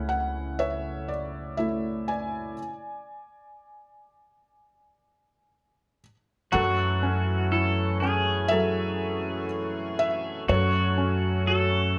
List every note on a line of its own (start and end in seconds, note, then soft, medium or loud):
0.00 2.54 C#2 medium
0.00 2.54 C#3 medium
0.00 0.56 A3 soft
0.00 0.56 C#4 soft
0.00 0.56 E4 soft
0.00 0.56 C#5 soft
0.00 0.59 E5 medium
0.00 0.09 F#5 medium
0.09 0.60 F#5 medium
0.59 2.54 C#5 medium
0.59 1.10 E5 medium
1.08 1.55 D5 medium
1.57 2.54 A3 soft
1.57 2.55 E4 soft
1.57 2.09 E5 medium
2.08 6.01 D5 medium
2.08 6.00 G#5 medium
6.52 10.45 F#2 medium
6.52 10.45 E3 medium
6.52 8.49 F#3 medium
6.52 11.98 A3 medium
6.52 10.45 C#4 medium
6.52 7.51 F#4 medium
6.52 11.98 F#4 medium
6.52 8.48 A4 medium
6.52 7.97 F#5 medium
7.03 8.01 C#4 soft
7.52 9.46 E4 medium
7.52 8.00 A4 medium
8.00 9.96 C#4 soft
8.00 10.44 G#4 medium
8.48 10.45 F#3 medium
8.48 10.45 A4 medium
8.48 9.45 E5 loud
9.99 10.45 E5 medium
10.48 11.98 F#2 medium
10.48 11.98 F#3 medium
10.48 11.50 F#4 medium
10.48 11.98 A4 medium
10.48 11.93 C#5 medium
10.98 11.98 C#4 soft
11.47 11.98 F#4 medium
11.47 11.98 A4 medium